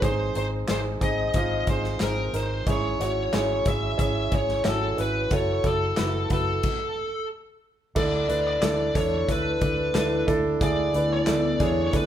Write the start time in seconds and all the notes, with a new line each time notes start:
0.02 G#1 G#2 C4 D#4 G#4 C5, kick, closed hi-hat
0.35 G#1 C4 D#4 G#4 C5, closed hi-hat
0.68 G#1 C4 D#4 G#4 C5, snare, clap, closed hi-hat
1.01 G#1 C4 D#4 G#4 D#5, kick, closed hi-hat
1.34 G#1 C4 D#4 F4 D#5, kick, closed hi-hat
1.67 G#1 C4 D#4 G#4 C5, kick, closed hi-hat
1.84 snare
2.00 G#1 C4 D#4 G#4 A#4, snare, clap, closed hi-hat
2.33 G#1 C4 D#4 A#4 C5, closed hi-hat
2.67 G#1 G#2 C#4 E4 G#4 C#5, kick, closed hi-hat
3.00 G#1 C#4 E4 F#4 C#5, closed hi-hat
3.33 G#1 C#4 E4 G#4 C#5, snare, clap, closed hi-hat
3.66 G#1 C#4 E4 G#4 E5, kick, closed hi-hat
3.98 G#1 C#4 E4 G#4 E5, kick, closed hi-hat
4.32 G#1 C#4 E4 G#4 C#5, kick, closed hi-hat
4.49 snare
4.64 G#1 C#4 E4 F#4 A4, snare, clap, closed hi-hat
4.97 G#1 C#4 E4 B4, closed hi-hat
5.31 F#1 E4 F#4 A4 C#5, kick, closed hi-hat
5.63 F#1 E4 F#4 A4, kick, closed hi-hat
5.96 F#1 E4 F#4 B4, snare, clap, closed hi-hat
6.30 F#1 E4 F#4 A4 B4, kick, closed hi-hat
6.63 kick, crash
7.95 D2 D3 A3 D4 E4 A4 D5, kick, crash
8.28 D2 D4 E4 B4, closed hi-hat
8.47 D5
8.61 D2 D4 E4 A4, snare, clap, closed hi-hat
8.95 E2 D4 E4 A4 C#5, kick, closed hi-hat
9.28 D2 D4 E4 A4 B4, kick, closed hi-hat
9.61 D2 D4 E4 A4, kick, closed hi-hat
9.94 D2 D4 E4 A4, snare, clap, closed hi-hat
10.27 D2 D4 E4 A4, kick, closed hi-hat
10.60 D2 D3 B3 D4 E4 G#4 D5, kick, closed hi-hat
10.94 D2 D4 E4 B4, closed hi-hat
11.14 D5
11.26 D2 D4 E4 A4, snare, clap, closed hi-hat
11.60 E2 D4 E4 G#4 C#5, kick, closed hi-hat
11.87 C#5
11.93 D2 D4 E4 A4 B4, kick, closed hi-hat